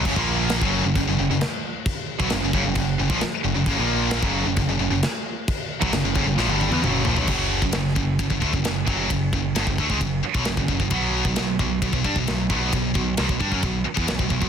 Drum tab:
CC |x---x---x---x---|x---x---x---x---|x---x---x---x---|x---x-----------|
RD |----------------|----------------|----------------|----------------|
SD |----o-------o---|----o-------o---|----o-------o---|----o---o-------|
T1 |----------------|----------------|----------------|----------oo----|
T2 |----------------|----------------|----------------|------------o---|
FT |----------------|----------------|----------------|--------------oo|
BD |oo---o--o-------|o--o--o-o--o----|o----o--o-------|o--o--o---------|

CC |x---------------|----------------|----------------|----------------|
RD |----b---b---b---|b---b---b---b---|b---b---b---b---|b---b---b---b---|
SD |----o-------o---|----o-------o---|----o-------o---|----o-------o---|
T1 |----------------|----------------|----------------|----------------|
T2 |----------------|----------------|----------------|----------------|
FT |----------------|----------------|----------------|----------------|
BD |o--o--o-oooo--o-|o-o--oooo--o-ooo|o--o--o-oooo--o-|o-o--oooo--o-ooo|